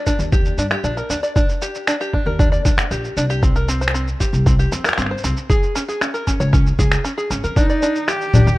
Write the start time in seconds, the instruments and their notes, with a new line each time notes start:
0.07 five-string banjo D4, kick, shaker
0.19 upright bass D#2, shaker
0.32 five-string banjo G4, kick, shaker
0.45 shaker
0.57 upright bass G2, five-string banjo D4, shaker
0.71 five-string banjo G4, finger snap
0.84 upright bass A#1, five-string banjo D4, shaker
0.97 five-string banjo A#4, shaker
1.10 upright bass D#2, five-string banjo D4, shaker
1.23 five-string banjo D5, shaker
1.36 five-string banjo D4, kick, shaker
1.49 shaker
1.62 five-string banjo G4, shaker
1.75 shaker
1.87 five-string banjo D4, finger snap, shaker
2.01 five-string banjo G4, shaker
2.13 five-string banjo D4, kick
2.26 upright bass D#2, five-string banjo A#4
2.39 five-string banjo D4, kick, shaker
2.52 five-string banjo D5, shaker
2.65 upright bass D#2, five-string banjo D4, kick, shaker
2.78 finger snap, shaker
2.91 upright bass A#1, five-string banjo G4, shaker
3.04 shaker
3.17 upright bass C2, five-string banjo D4, shaker
3.30 five-string banjo G4, shaker
3.43 five-string banjo C4, kick, shaker
3.56 five-string banjo A#4, shaker
3.68 five-string banjo C4, shaker
3.81 five-string banjo C5, shaker
3.88 finger snap
3.94 five-string banjo C4, shaker
4.08 shaker
4.20 five-string banjo G4, kick, shaker
4.33 upright bass C2, shaker
4.46 five-string banjo C4, kick, shaker
4.59 five-string banjo G4, shaker
4.72 upright bass F2, five-string banjo C4, shaker
4.84 five-string banjo A#4, finger snap, shaker
4.89 finger snap
4.93 finger snap
4.98 upright bass G1, five-string banjo C4, finger snap, shaker
5.02 finger snap
5.06 finger snap
5.11 five-string banjo C5
5.18 shaker
5.24 upright bass C2, five-string banjo C4, shaker
5.37 shaker
5.50 five-string banjo G#4, kick, shaker
5.63 shaker
5.75 five-string banjo C#4, shaker
5.88 five-string banjo G#4, shaker
6.01 five-string banjo C#4, finger snap, shaker
6.14 five-string banjo A#4, shaker
6.27 five-string banjo C#4, kick, shaker
6.40 upright bass C#2, five-string banjo C#5, shaker
6.53 five-string banjo C#4, kick, shaker
6.67 shaker
6.79 upright bass C#2, five-string banjo G#4, kick, shaker
6.92 finger snap, shaker
7.04 five-string banjo C#4, shaker
7.18 five-string banjo G#4, shaker
7.30 upright bass G#1, five-string banjo C#4, shaker
7.44 upright bass F2, five-string banjo A#4, shaker
7.56 ambient pad D#3, five-string banjo D4, cello D#4, kick, shaker
7.70 five-string banjo D5, shaker
7.82 five-string banjo D4, shaker
7.96 shaker
8.02 ambient pad A#3
8.08 cello G4, five-string banjo G4, finger snap, shaker
8.21 shaker
8.34 five-string banjo D4, kick, low conga, shaker
8.47 upright bass D#2, five-string banjo G4, shaker